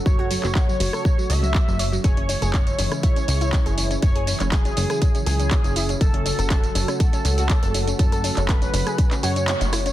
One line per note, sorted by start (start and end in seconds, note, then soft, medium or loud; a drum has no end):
0.00 2.00 C#3 medium
0.00 2.00 F#3 medium
0.00 2.00 A3 medium
0.00 2.00 F#4 medium
0.06 0.37 F#1 loud
0.06 0.14 F#3 medium
0.06 0.51 C#5 medium
0.06 kick loud
0.06 tambourine soft
0.19 0.26 F#4 medium
0.31 0.39 F#3 medium
0.31 open hi-hat loud
0.31 tambourine medium
0.43 0.74 F#1 medium
0.43 0.51 F#3 medium
0.43 clap soft
0.43 tambourine soft
0.55 0.63 F#4 medium
0.55 1.31 C#5 loud
0.55 kick loud
0.55 clap loud
0.55 tambourine soft
0.68 0.76 F#3 medium
0.68 tambourine soft
0.80 0.89 F#1 loud
0.80 0.88 F#3 medium
0.80 open hi-hat loud
0.80 tambourine medium
0.93 1.00 A4 medium
0.93 cross-stick medium
0.93 tambourine soft
1.05 1.13 F#3 medium
1.05 kick loud
1.05 tambourine soft
1.18 1.25 F#3 medium
1.18 tambourine soft
1.30 1.61 C#2 loud
1.30 1.38 C#5 medium
1.30 1.95 E5 medium
1.30 open hi-hat loud
1.30 tambourine medium
1.43 1.50 F#3 medium
1.43 tambourine soft
1.54 1.63 F#3 medium
1.54 kick loud
1.54 clap loud
1.54 tambourine soft
1.68 1.98 F#1 loud
1.68 1.75 F#3 medium
1.68 tambourine soft
1.79 1.87 C#5 medium
1.79 open hi-hat loud
1.79 tambourine medium
1.92 2.00 F#3 medium
1.92 tambourine soft
2.04 2.36 F#1 loud
2.04 9.93 C#3 medium
2.04 5.97 E3 medium
2.04 4.01 G#3 medium
2.04 5.97 E4 medium
2.04 2.12 G#4 medium
2.04 2.94 C#5 loud
2.04 kick loud
2.04 closed hi-hat medium
2.04 tambourine soft
2.17 2.24 C#4 medium
2.17 closed hi-hat soft
2.29 2.37 C#4 medium
2.29 open hi-hat medium
2.29 tambourine medium
2.42 2.73 F#1 medium
2.42 2.49 G#4 medium
2.42 closed hi-hat soft
2.42 tambourine soft
2.54 2.62 C#4 medium
2.54 kick loud
2.54 clap loud
2.54 closed hi-hat medium
2.54 tambourine soft
2.67 closed hi-hat soft
2.67 tambourine soft
2.79 2.88 F#1 loud
2.79 2.87 C#4 medium
2.79 open hi-hat loud
2.79 tambourine medium
2.92 2.99 C#4 medium
2.92 cross-stick medium
2.92 closed hi-hat soft
2.92 tambourine soft
3.03 3.11 E4 medium
3.03 3.93 C#5 loud
3.03 kick loud
3.03 closed hi-hat medium
3.03 tambourine soft
3.16 3.24 C#4 medium
3.16 closed hi-hat soft
3.16 tambourine soft
3.28 3.60 C#2 medium
3.28 3.36 C#4 medium
3.28 open hi-hat loud
3.28 tambourine medium
3.41 3.48 E4 medium
3.41 closed hi-hat soft
3.41 tambourine soft
3.53 3.61 C#4 medium
3.53 kick loud
3.53 clap loud
3.53 closed hi-hat medium
3.53 tambourine soft
3.66 3.97 F#1 loud
3.66 3.73 G#4 loud
3.66 closed hi-hat soft
3.66 tambourine soft
3.78 3.86 C#4 medium
3.78 open hi-hat loud
3.78 tambourine medium
3.91 3.98 C#4 medium
3.91 closed hi-hat soft
3.91 tambourine soft
4.02 4.34 F#1 loud
4.02 9.93 F#3 medium
4.02 4.11 C#4 medium
4.02 4.47 C#5 medium
4.02 kick loud
4.02 closed hi-hat medium
4.02 tambourine soft
4.16 4.23 G#4 medium
4.16 closed hi-hat soft
4.27 4.35 C#4 medium
4.27 open hi-hat medium
4.27 tambourine medium
4.40 4.71 F#1 medium
4.40 4.48 C#4 medium
4.40 clap soft
4.40 closed hi-hat soft
4.40 tambourine soft
4.52 5.17 G#4 loud
4.52 4.60 G#4 loud
4.52 kick loud
4.52 clap loud
4.52 closed hi-hat medium
4.52 tambourine soft
4.65 4.72 C#4 medium
4.65 closed hi-hat soft
4.65 tambourine soft
4.77 4.86 F#1 loud
4.77 4.85 C#4 medium
4.77 open hi-hat medium
4.77 tambourine medium
4.90 4.97 G#4 medium
4.90 cross-stick medium
4.90 closed hi-hat soft
4.90 tambourine soft
5.02 5.10 C#4 medium
5.02 kick loud
5.02 closed hi-hat medium
5.02 tambourine soft
5.15 5.22 C#4 medium
5.15 closed hi-hat soft
5.15 tambourine soft
5.26 5.58 C#2 loud
5.26 5.91 G#4 loud
5.26 5.34 G#4 medium
5.26 open hi-hat loud
5.26 tambourine medium
5.40 5.47 C#4 medium
5.40 closed hi-hat soft
5.40 tambourine soft
5.51 5.59 C#4 medium
5.51 kick loud
5.51 clap loud
5.51 closed hi-hat medium
5.51 tambourine soft
5.64 5.95 F#1 loud
5.64 5.72 C#4 medium
5.64 closed hi-hat soft
5.64 tambourine soft
5.76 5.84 E4 medium
5.76 open hi-hat loud
5.76 tambourine medium
5.89 5.96 C#4 medium
5.89 closed hi-hat soft
5.89 tambourine soft
6.01 6.32 F#1 loud
6.01 9.93 A3 medium
6.01 9.93 F#4 medium
6.01 6.09 A4 medium
6.01 6.91 A4 loud
6.01 kick loud
6.01 closed hi-hat medium
6.01 tambourine soft
6.14 6.21 C#4 medium
6.14 closed hi-hat soft
6.26 6.34 C#4 medium
6.26 open hi-hat medium
6.26 tambourine medium
6.39 6.69 F#1 medium
6.39 6.46 A4 medium
6.39 closed hi-hat soft
6.39 tambourine soft
6.50 6.58 C#4 medium
6.50 kick loud
6.50 clap loud
6.50 closed hi-hat medium
6.50 tambourine soft
6.64 closed hi-hat soft
6.64 tambourine soft
6.75 6.84 F#1 loud
6.75 6.83 C#4 medium
6.75 open hi-hat loud
6.75 tambourine medium
6.88 6.95 C#4 medium
6.88 cross-stick medium
6.88 closed hi-hat soft
6.88 tambourine soft
7.00 7.08 F#4 medium
7.00 7.90 A4 loud
7.00 kick loud
7.00 closed hi-hat medium
7.00 tambourine soft
7.13 7.20 C#4 medium
7.13 closed hi-hat soft
7.13 tambourine soft
7.25 7.56 C#2 loud
7.25 7.33 C#4 medium
7.25 open hi-hat loud
7.25 tambourine medium
7.38 7.45 F#4 medium
7.38 closed hi-hat soft
7.38 tambourine soft
7.49 7.58 C#4 medium
7.49 kick loud
7.49 clap loud
7.49 closed hi-hat loud
7.49 tambourine soft
7.63 7.93 F#1 loud
7.63 7.70 A4 loud
7.63 closed hi-hat soft
7.63 tambourine soft
7.74 7.82 C#4 medium
7.74 open hi-hat loud
7.74 tambourine medium
7.88 7.95 C#4 medium
7.88 closed hi-hat soft
7.88 tambourine soft
7.99 8.31 F#1 medium
7.99 8.07 C#4 medium
7.99 8.44 A4 medium
7.99 kick loud
7.99 closed hi-hat medium
7.99 tambourine soft
8.12 8.20 A4 loud
8.12 closed hi-hat soft
8.12 tambourine soft
8.24 8.32 C#4 medium
8.24 open hi-hat medium
8.24 tambourine medium
8.37 8.68 F#1 medium
8.37 8.44 C#4 medium
8.37 clap soft
8.37 closed hi-hat soft
8.37 tambourine soft
8.49 8.57 A4 loud
8.49 9.14 B4 loud
8.49 kick loud
8.49 clap loud
8.49 closed hi-hat medium
8.49 tambourine soft
8.62 8.69 C#4 medium
8.62 closed hi-hat soft
8.62 tambourine soft
8.74 8.83 F#1 loud
8.74 8.82 C#4 medium
8.74 open hi-hat loud
8.74 tambourine medium
8.87 8.94 G#4 medium
8.87 cross-stick medium
8.87 closed hi-hat soft
8.87 tambourine soft
8.98 9.06 C#4 medium
8.98 kick loud
8.98 closed hi-hat medium
8.98 tambourine soft
9.11 9.19 C#4 medium
9.11 clap soft
9.11 closed hi-hat soft
9.11 tambourine soft
9.23 9.55 F#2 medium
9.23 9.31 F#4 medium
9.23 9.88 C#5 medium
9.23 open hi-hat loud
9.23 tambourine medium
9.36 9.43 C#4 medium
9.36 closed hi-hat soft
9.36 tambourine soft
9.48 9.56 C#4 medium
9.48 clap loud
9.48 closed hi-hat loud
9.48 tambourine soft
9.61 9.92 F#1 medium
9.61 9.68 C#4 medium
9.61 closed hi-hat soft
9.61 tambourine soft
9.73 9.81 E4 medium
9.73 cross-stick medium
9.73 open hi-hat loud
9.73 tambourine medium
9.86 9.93 C#4 medium
9.86 closed hi-hat soft
9.86 tambourine soft